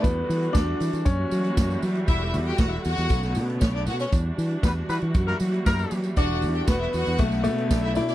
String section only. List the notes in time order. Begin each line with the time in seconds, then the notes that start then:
Already playing: D3
0.04 E3 G3 F#4
1.05 E3 G3 A#3 F#4
2.08 D3 F#4
3.10 C#3 A3 B3
4.11 E3 G3 D4 F#4
5.15 A#3
6.18 D3 F#4
7.19 C#3 A3 B3